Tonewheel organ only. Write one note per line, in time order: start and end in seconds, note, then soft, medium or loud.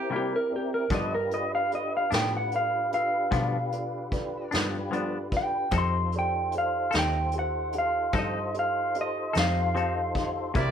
0.00 0.87 C4 soft
0.00 0.87 E4 medium
0.00 0.88 G4 medium
0.00 0.87 A#4 medium
0.91 5.69 D4 medium
0.91 5.69 F4 medium
0.91 5.69 G4 medium
0.91 5.69 B4 medium
5.74 10.53 D#4 medium
5.74 10.52 F4 medium
5.74 10.52 A4 medium
5.74 10.52 C5 medium
10.56 10.71 E4 medium
10.56 10.71 G4 medium
10.56 10.71 A#4 medium
10.56 10.71 C5 medium